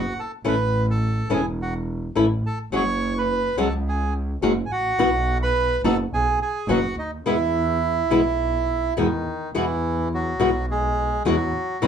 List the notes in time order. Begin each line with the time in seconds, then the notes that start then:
Already playing: F#1 F#4 F#5
0.19 A4 A5
0.44 A1 E3 A3 C#4 E4 B4 B5
0.90 A4 A5
1.30 E1 E3 A3 C#4 E4 G#4 G#5
1.62 F#4 F#5
2.15 A1 E3 A3 C#4 E4
2.46 A4 A5
2.72 F#1 F#3 G#3 C#4 F#4 C#5
2.76 C#6
3.18 B4 B5
3.57 C#2 F#3 G#3 C#4 F#4 A4
3.62 A5
3.88 G#4 G#5
4.42 F#1 F#3 G#3 C#4 F#4
4.66 G#5
4.71 A1 F#4 F#5
4.98 B1 B2 E3 B3 E4 F#4
5.43 B4 B5
5.83 F#1 B2 F#3 B3 D#4 F#4 A4 A5
6.11 B1 G#4 G#5
6.42 G#4 G#5
6.68 F#1 B2 F#3 B3 D#4 F#4 F#5
6.96 D2 D#4 D#5
7.25 E2 B2 E3 G#3 B3 E4 E5
8.10 B1 B2 E3 G#3 B3 E4
8.97 E2 B2 D#3 E3 G#3 B3 D#4 E4
9.54 E2 B2 E3 G#3 B3 E4 F#4
10.14 F#3 F#4
10.39 B1 B2 E3 G#3 B3 F#4
10.71 G#3 G#4
11.25 E2 B2 E3 F#3 G#3 B3 F#4
11.82 E2 C3 E3 G3 C4 E4